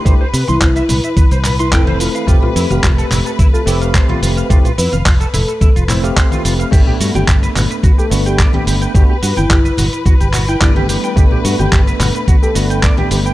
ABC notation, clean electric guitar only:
X:1
M:4/4
L:1/16
Q:1/4=108
K:G
V:1 name="Clean electric guitar"
c c B c' c e B e B c B c' g c =F =f | =F F E =f F A E A E F E f c F F f | =F F E =f F A E A E F E f c F F f | G G F g G B F B F G F g d G G g |
G G F g G B F B F G F g d G G g | G G F g G B F B F G F g d G G g |]